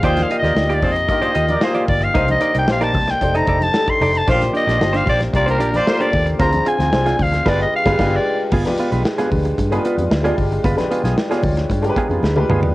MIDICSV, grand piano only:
0, 0, Header, 1, 2, 480
1, 0, Start_track
1, 0, Tempo, 530504
1, 31, Time_signature, 4, 2, 24, 8
1, 11533, End_track
2, 0, Start_track
2, 0, Title_t, "Grand piano"
2, 0, Program_c, 0, 0
2, 0, Control_c, 0, 64, 127
2, 26, Note_on_c, 0, 58, 84
2, 27, Note_on_c, 0, 63, 77
2, 31, Note_on_c, 0, 67, 74
2, 33, Note_on_c, 0, 65, 78
2, 36, Note_on_c, 0, 74, 91
2, 44, Control_c, 0, 64, 0
2, 216, Control_c, 0, 64, 127
2, 433, Note_off_c, 0, 58, 0
2, 434, Note_off_c, 0, 63, 0
2, 436, Note_off_c, 0, 67, 0
2, 437, Note_off_c, 0, 65, 0
2, 439, Note_off_c, 0, 74, 0
2, 502, Note_on_c, 0, 58, 74
2, 508, Note_on_c, 0, 63, 70
2, 508, Note_on_c, 0, 65, 68
2, 510, Note_on_c, 0, 67, 68
2, 511, Note_on_c, 0, 74, 81
2, 911, Note_off_c, 0, 58, 0
2, 915, Note_off_c, 0, 63, 0
2, 915, Note_off_c, 0, 65, 0
2, 916, Note_off_c, 0, 67, 0
2, 916, Note_off_c, 0, 74, 0
2, 987, Note_on_c, 0, 58, 72
2, 993, Note_on_c, 0, 65, 68
2, 994, Note_on_c, 0, 63, 68
2, 995, Note_on_c, 0, 67, 69
2, 999, Note_on_c, 0, 75, 85
2, 1394, Note_off_c, 0, 58, 0
2, 1397, Note_off_c, 0, 63, 0
2, 1397, Note_off_c, 0, 65, 0
2, 1398, Note_off_c, 0, 67, 0
2, 1400, Note_off_c, 0, 75, 0
2, 1465, Note_on_c, 0, 58, 84
2, 1468, Note_on_c, 0, 63, 73
2, 1468, Note_on_c, 0, 65, 78
2, 1472, Note_on_c, 0, 67, 77
2, 1474, Note_on_c, 0, 77, 84
2, 1873, Note_off_c, 0, 58, 0
2, 1875, Note_off_c, 0, 63, 0
2, 1875, Note_off_c, 0, 65, 0
2, 1877, Note_off_c, 0, 67, 0
2, 1878, Note_off_c, 0, 77, 0
2, 1948, Note_on_c, 0, 58, 86
2, 1952, Note_on_c, 0, 62, 75
2, 1954, Note_on_c, 0, 63, 73
2, 1956, Note_on_c, 0, 72, 93
2, 1957, Note_on_c, 0, 67, 70
2, 1962, Control_c, 0, 64, 0
2, 2098, Control_c, 0, 64, 127
2, 2355, Note_off_c, 0, 58, 0
2, 2357, Note_off_c, 0, 62, 0
2, 2358, Note_off_c, 0, 63, 0
2, 2359, Note_off_c, 0, 67, 0
2, 2359, Note_off_c, 0, 72, 0
2, 2430, Note_on_c, 0, 58, 74
2, 2435, Note_on_c, 0, 62, 67
2, 2435, Note_on_c, 0, 63, 65
2, 2435, Note_on_c, 0, 67, 73
2, 2441, Note_on_c, 0, 72, 80
2, 2836, Note_off_c, 0, 58, 0
2, 2838, Note_off_c, 0, 63, 0
2, 2838, Note_off_c, 0, 67, 0
2, 2839, Note_off_c, 0, 62, 0
2, 2841, Note_off_c, 0, 72, 0
2, 2910, Note_on_c, 0, 57, 72
2, 2912, Note_on_c, 0, 63, 67
2, 2915, Note_on_c, 0, 62, 68
2, 2917, Note_on_c, 0, 67, 66
2, 2920, Note_on_c, 0, 72, 84
2, 2925, Control_c, 0, 64, 0
2, 3088, Control_c, 0, 64, 127
2, 3316, Note_off_c, 0, 57, 0
2, 3317, Note_off_c, 0, 63, 0
2, 3318, Note_off_c, 0, 62, 0
2, 3319, Note_off_c, 0, 67, 0
2, 3321, Note_off_c, 0, 72, 0
2, 3389, Note_on_c, 0, 57, 70
2, 3391, Note_on_c, 0, 62, 65
2, 3394, Note_on_c, 0, 63, 70
2, 3394, Note_on_c, 0, 67, 65
2, 3400, Note_on_c, 0, 69, 83
2, 3795, Note_off_c, 0, 57, 0
2, 3796, Note_off_c, 0, 62, 0
2, 3798, Note_off_c, 0, 63, 0
2, 3798, Note_off_c, 0, 67, 0
2, 3801, Note_off_c, 0, 69, 0
2, 3869, Note_on_c, 0, 61, 61
2, 3871, Note_on_c, 0, 58, 82
2, 3877, Note_on_c, 0, 67, 85
2, 3878, Note_on_c, 0, 65, 80
2, 3881, Note_on_c, 0, 72, 100
2, 3885, Control_c, 0, 64, 0
2, 3928, Note_off_c, 0, 61, 0
2, 3930, Note_on_c, 0, 62, 79
2, 4036, Control_c, 0, 64, 127
2, 4277, Note_off_c, 0, 58, 0
2, 4280, Note_off_c, 0, 65, 0
2, 4280, Note_off_c, 0, 67, 0
2, 4281, Note_off_c, 0, 72, 0
2, 4306, Note_off_c, 0, 62, 0
2, 4353, Note_on_c, 0, 58, 77
2, 4357, Note_on_c, 0, 62, 76
2, 4359, Note_on_c, 0, 65, 70
2, 4362, Note_on_c, 0, 72, 81
2, 4365, Note_on_c, 0, 67, 72
2, 4758, Note_off_c, 0, 58, 0
2, 4759, Note_off_c, 0, 62, 0
2, 4760, Note_off_c, 0, 65, 0
2, 4762, Note_off_c, 0, 72, 0
2, 4763, Note_off_c, 0, 67, 0
2, 4835, Note_on_c, 0, 58, 82
2, 4837, Note_on_c, 0, 65, 70
2, 4838, Note_on_c, 0, 62, 75
2, 4840, Note_on_c, 0, 67, 70
2, 4847, Note_on_c, 0, 70, 89
2, 5238, Note_off_c, 0, 58, 0
2, 5239, Note_off_c, 0, 65, 0
2, 5240, Note_off_c, 0, 62, 0
2, 5241, Note_off_c, 0, 67, 0
2, 5244, Note_off_c, 0, 70, 0
2, 5311, Note_on_c, 0, 58, 76
2, 5311, Note_on_c, 0, 62, 65
2, 5312, Note_on_c, 0, 65, 65
2, 5316, Note_on_c, 0, 67, 72
2, 5319, Note_on_c, 0, 69, 66
2, 5373, Note_off_c, 0, 69, 0
2, 5377, Note_on_c, 0, 70, 77
2, 5716, Note_off_c, 0, 62, 0
2, 5717, Note_off_c, 0, 58, 0
2, 5717, Note_off_c, 0, 65, 0
2, 5719, Note_off_c, 0, 67, 0
2, 5750, Note_off_c, 0, 70, 0
2, 5785, Note_on_c, 0, 60, 80
2, 5792, Note_on_c, 0, 62, 79
2, 5796, Note_on_c, 0, 65, 81
2, 5797, Note_on_c, 0, 68, 83
2, 5799, Note_on_c, 0, 72, 97
2, 5803, Control_c, 0, 64, 0
2, 5939, Control_c, 0, 64, 127
2, 6193, Note_off_c, 0, 60, 0
2, 6197, Note_off_c, 0, 62, 0
2, 6199, Note_off_c, 0, 65, 0
2, 6199, Note_off_c, 0, 68, 0
2, 6200, Note_off_c, 0, 72, 0
2, 6269, Note_on_c, 0, 60, 76
2, 6271, Note_on_c, 0, 62, 72
2, 6272, Note_on_c, 0, 65, 77
2, 6277, Note_on_c, 0, 68, 70
2, 6279, Note_on_c, 0, 72, 84
2, 6675, Note_off_c, 0, 60, 0
2, 6676, Note_off_c, 0, 62, 0
2, 6677, Note_off_c, 0, 65, 0
2, 6679, Note_off_c, 0, 68, 0
2, 6680, Note_off_c, 0, 72, 0
2, 6748, Note_on_c, 0, 56, 111
2, 6751, Note_on_c, 0, 62, 102
2, 6752, Note_on_c, 0, 65, 98
2, 6755, Note_on_c, 0, 67, 108
2, 6758, Note_on_c, 0, 71, 108
2, 6764, Control_c, 0, 64, 0
2, 6913, Note_off_c, 0, 56, 0
2, 6915, Note_off_c, 0, 62, 0
2, 6915, Note_off_c, 0, 65, 0
2, 6917, Note_off_c, 0, 67, 0
2, 6919, Note_off_c, 0, 71, 0
2, 6946, Control_c, 0, 64, 127
2, 7107, Note_on_c, 0, 56, 106
2, 7110, Note_on_c, 0, 62, 95
2, 7111, Note_on_c, 0, 65, 94
2, 7113, Note_on_c, 0, 67, 95
2, 7120, Note_on_c, 0, 71, 99
2, 7211, Note_off_c, 0, 56, 0
2, 7213, Note_off_c, 0, 62, 0
2, 7214, Note_off_c, 0, 65, 0
2, 7215, Note_off_c, 0, 67, 0
2, 7219, Note_off_c, 0, 71, 0
2, 7229, Note_on_c, 0, 56, 101
2, 7230, Note_on_c, 0, 62, 105
2, 7234, Note_on_c, 0, 65, 107
2, 7236, Note_on_c, 0, 67, 111
2, 7241, Note_on_c, 0, 71, 101
2, 7393, Note_off_c, 0, 56, 0
2, 7394, Note_off_c, 0, 62, 0
2, 7396, Note_off_c, 0, 65, 0
2, 7398, Note_off_c, 0, 67, 0
2, 7400, Note_off_c, 0, 71, 0
2, 7722, Control_c, 0, 64, 0
2, 7828, Note_on_c, 0, 62, 76
2, 7829, Note_on_c, 0, 56, 88
2, 7832, Note_on_c, 0, 65, 75
2, 7835, Note_on_c, 0, 67, 79
2, 7836, Note_on_c, 0, 71, 94
2, 7887, Control_c, 0, 64, 127
2, 8234, Note_off_c, 0, 62, 0
2, 8235, Note_off_c, 0, 56, 0
2, 8236, Note_off_c, 0, 65, 0
2, 8238, Note_off_c, 0, 67, 0
2, 8238, Note_off_c, 0, 71, 0
2, 8303, Note_on_c, 0, 56, 72
2, 8304, Note_on_c, 0, 62, 77
2, 8307, Note_on_c, 0, 65, 67
2, 8313, Note_on_c, 0, 71, 82
2, 8314, Note_on_c, 0, 67, 73
2, 8712, Note_off_c, 0, 56, 0
2, 8712, Note_off_c, 0, 62, 0
2, 8714, Note_off_c, 0, 65, 0
2, 8717, Note_off_c, 0, 67, 0
2, 8717, Note_off_c, 0, 71, 0
2, 8783, Note_on_c, 0, 56, 89
2, 8789, Note_on_c, 0, 62, 80
2, 8792, Note_on_c, 0, 65, 87
2, 8795, Note_on_c, 0, 67, 79
2, 8798, Note_on_c, 0, 71, 100
2, 9191, Note_off_c, 0, 56, 0
2, 9195, Note_off_c, 0, 62, 0
2, 9196, Note_off_c, 0, 65, 0
2, 9197, Note_off_c, 0, 67, 0
2, 9199, Note_off_c, 0, 71, 0
2, 9256, Note_on_c, 0, 56, 99
2, 9262, Note_on_c, 0, 62, 91
2, 9266, Note_on_c, 0, 65, 98
2, 9269, Note_on_c, 0, 67, 87
2, 9270, Note_on_c, 0, 74, 121
2, 9668, Note_off_c, 0, 56, 0
2, 9671, Note_off_c, 0, 62, 0
2, 9673, Note_off_c, 0, 65, 0
2, 9674, Note_off_c, 0, 67, 0
2, 9675, Note_off_c, 0, 74, 0
2, 9741, Note_on_c, 0, 56, 88
2, 9744, Note_on_c, 0, 65, 78
2, 9745, Note_on_c, 0, 62, 83
2, 9746, Note_on_c, 0, 67, 80
2, 9752, Note_on_c, 0, 71, 95
2, 10150, Note_off_c, 0, 56, 0
2, 10152, Note_off_c, 0, 62, 0
2, 10152, Note_off_c, 0, 65, 0
2, 10153, Note_off_c, 0, 67, 0
2, 10156, Note_off_c, 0, 71, 0
2, 10220, Note_on_c, 0, 56, 76
2, 10222, Note_on_c, 0, 65, 70
2, 10223, Note_on_c, 0, 62, 76
2, 10228, Note_on_c, 0, 67, 70
2, 10231, Note_on_c, 0, 73, 69
2, 10286, Note_on_c, 0, 74, 86
2, 10288, Note_off_c, 0, 73, 0
2, 10629, Note_off_c, 0, 56, 0
2, 10630, Note_off_c, 0, 65, 0
2, 10631, Note_off_c, 0, 62, 0
2, 10633, Note_off_c, 0, 67, 0
2, 10663, Note_off_c, 0, 74, 0
2, 10694, Note_on_c, 0, 56, 86
2, 10697, Note_on_c, 0, 62, 78
2, 10699, Note_on_c, 0, 65, 84
2, 10699, Note_on_c, 0, 67, 83
2, 10702, Note_on_c, 0, 70, 79
2, 10764, Note_off_c, 0, 70, 0
2, 10764, Note_on_c, 0, 71, 102
2, 10819, Note_on_c, 0, 79, 72
2, 11047, Note_off_c, 0, 79, 0
2, 11067, Note_on_c, 0, 83, 75
2, 11106, Note_off_c, 0, 56, 0
2, 11108, Note_off_c, 0, 62, 0
2, 11109, Note_off_c, 0, 65, 0
2, 11109, Note_off_c, 0, 67, 0
2, 11141, Note_off_c, 0, 71, 0
2, 11184, Note_on_c, 0, 56, 101
2, 11184, Note_on_c, 0, 62, 93
2, 11185, Note_on_c, 0, 65, 94
2, 11188, Note_on_c, 0, 67, 91
2, 11195, Note_on_c, 0, 71, 110
2, 11514, Note_off_c, 0, 83, 0
2, 11528, Note_off_c, 0, 62, 0
2, 11533, Note_off_c, 0, 56, 0
2, 11533, Note_off_c, 0, 65, 0
2, 11533, Note_off_c, 0, 67, 0
2, 11533, Note_off_c, 0, 71, 0
2, 11533, End_track
0, 0, End_of_file